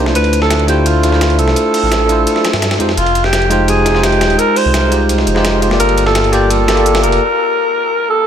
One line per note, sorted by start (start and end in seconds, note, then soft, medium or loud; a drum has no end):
0.00 0.14 C2 medium
0.00 0.65 A3 medium
0.05 0.65 D4 medium
0.05 0.66 E4 medium
0.05 0.67 F4 medium
0.05 snare medium
0.09 0.68 C5 medium
0.15 1.02 D2 loud
0.15 0.40 B4 loud
0.15 closed hi-hat medium
0.15 ride medium
0.24 ride soft
0.33 closed hi-hat medium
0.33 ride medium
0.42 0.66 A4 medium
0.42 snare medium
0.50 snare loud
0.50 closed hi-hat medium
0.50 ride medium
0.59 ride soft
0.67 1.01 A3 medium
0.67 1.01 D4 medium
0.67 1.01 E4 medium
0.67 1.02 F4 medium
0.67 0.87 G4 medium
0.67 1.02 C5 loud
0.67 closed hi-hat medium
0.67 ride medium
0.86 1.38 F4 medium
0.86 closed hi-hat medium
0.86 ride medium
1.02 1.40 D2 medium
1.02 1.08 A3 medium
1.02 1.10 D4 medium
1.02 1.10 E4 medium
1.02 1.11 F4 medium
1.02 1.11 C5 medium
1.02 snare soft
1.02 closed hi-hat medium
1.02 ride medium
1.09 2.05 A3 medium
1.09 2.06 D4 medium
1.09 2.07 E4 medium
1.09 snare soft
1.14 2.08 F4 medium
1.14 2.09 C5 loud
1.21 snare loud
1.21 closed hi-hat medium
1.21 ride medium
1.30 ride soft
1.39 1.55 C2 loud
1.39 2.76 A4 loud
1.39 closed hi-hat medium
1.39 ride medium
1.48 snare medium
1.56 closed hi-hat medium
1.56 ride medium
1.74 closed hi-hat medium
1.74 open hi-hat medium
1.83 2.26 A1 medium
1.92 snare loud
1.92 closed hi-hat medium
1.92 ride medium
2.06 2.50 A3 medium
2.06 2.51 D4 medium
2.06 2.51 E4 medium
2.06 closed hi-hat medium
2.06 ride medium
2.11 2.52 F4 medium
2.11 2.53 C5 loud
2.27 closed hi-hat medium
2.27 ride medium
2.36 snare soft
2.44 snare loud
2.44 closed hi-hat medium
2.44 ride medium
2.53 2.79 G2 loud
2.53 snare loud
2.53 ride medium
2.62 snare loud
2.62 closed hi-hat medium
2.62 ride medium
2.71 snare loud
2.71 ride medium
2.79 2.96 F2 medium
2.79 2.90 G#3 medium
2.79 2.90 D#4 medium
2.79 2.91 F4 medium
2.79 2.91 G4 medium
2.79 2.91 C5 loud
2.79 closed hi-hat medium
2.79 ride medium
2.89 snare medium
2.97 3.84 F1 loud
2.97 3.26 F4 loud
2.97 closed hi-hat medium
2.97 ride medium
3.06 ride soft
3.15 closed hi-hat medium
3.15 ride medium
3.24 3.50 G4 loud
3.24 snare medium
3.33 snare loud
3.33 closed hi-hat medium
3.33 ride medium
3.42 ride soft
3.49 3.83 G#3 loud
3.49 3.83 D#4 medium
3.49 3.84 F4 medium
3.49 3.70 G4 loud
3.49 3.84 G4 medium
3.49 3.84 C5 loud
3.49 closed hi-hat medium
3.49 ride medium
3.68 4.05 G#4 loud
3.68 closed hi-hat medium
3.68 ride medium
3.84 4.23 F1 medium
3.84 3.91 G#3 medium
3.84 3.92 D#4 medium
3.84 3.93 F4 medium
3.84 3.93 G4 medium
3.84 3.93 C5 medium
3.84 snare soft
3.84 closed hi-hat medium
3.84 ride medium
3.92 4.88 G#3 medium
3.92 4.89 D#4 medium
3.92 4.90 F4 medium
3.92 snare soft
3.96 4.90 G4 medium
3.96 4.91 C5 loud
4.03 4.40 G4 loud
4.03 snare loud
4.03 closed hi-hat medium
4.03 ride medium
4.12 ride soft
4.21 4.37 D#1 loud
4.21 snare loud
4.21 closed hi-hat medium
4.21 ride medium
4.30 ride soft
4.39 4.58 A#4 loud
4.39 closed hi-hat medium
4.39 ride medium
4.56 5.09 C5 loud
4.56 closed hi-hat medium
4.56 open hi-hat medium
4.65 5.08 C2 medium
4.74 snare loud
4.74 closed hi-hat medium
4.74 ride medium
4.89 5.32 G#3 medium
4.89 5.33 D#4 medium
4.89 5.34 F4 medium
4.89 closed hi-hat medium
4.89 ride medium
4.93 5.34 G4 medium
4.93 5.35 C5 loud
5.09 5.25 C2 medium
5.09 closed hi-hat medium
5.09 ride medium
5.18 snare soft
5.27 5.79 F1 medium
5.27 closed hi-hat medium
5.27 ride medium
5.34 5.59 G#3 loud
5.34 5.60 D#4 medium
5.34 5.60 F4 medium
5.34 5.61 G4 medium
5.34 5.61 C5 loud
5.34 snare soft
5.45 snare loud
5.45 closed hi-hat medium
5.45 ride medium
5.61 5.68 G#3 medium
5.61 5.69 D#4 medium
5.61 5.69 F4 medium
5.61 5.69 G4 medium
5.61 5.70 C5 medium
5.61 closed hi-hat medium
5.61 ride medium
5.68 6.29 A#3 medium
5.68 6.30 F4 medium
5.68 6.31 G4 medium
5.68 snare medium
5.73 6.32 A4 medium
5.73 6.32 D5 medium
5.80 6.67 G1 loud
5.80 6.05 A#4 loud
5.80 closed hi-hat loud
5.80 ride medium
5.89 ride soft
5.98 closed hi-hat medium
5.98 ride medium
6.06 6.34 A4 loud
6.06 snare medium
6.15 snare loud
6.15 closed hi-hat medium
6.15 ride medium
6.24 ride soft
6.31 6.65 A#3 loud
6.31 6.66 F4 medium
6.31 6.52 G4 loud
6.31 6.66 G4 medium
6.31 6.66 A4 medium
6.31 6.67 D5 loud
6.31 closed hi-hat medium
6.31 ride medium
6.50 7.03 A4 loud
6.50 closed hi-hat loud
6.50 ride medium
6.67 7.05 G1 medium
6.67 6.73 A#3 medium
6.67 6.75 F4 medium
6.67 6.75 G4 medium
6.67 6.75 A4 medium
6.67 6.76 D5 medium
6.67 snare loud
6.67 closed hi-hat medium
6.67 ride medium
6.74 7.20 A#3 medium
6.74 7.20 F4 medium
6.74 7.21 G4 medium
6.74 ride soft
6.78 7.22 A4 medium
6.78 7.23 D5 loud
6.86 closed hi-hat loud
6.86 ride medium
6.95 snare loud
6.95 ride medium
7.03 7.19 F1 loud
7.03 8.05 A#4 loud
7.03 closed hi-hat medium
7.03 ride soft
7.12 ride medium
8.10 8.27 A4 loud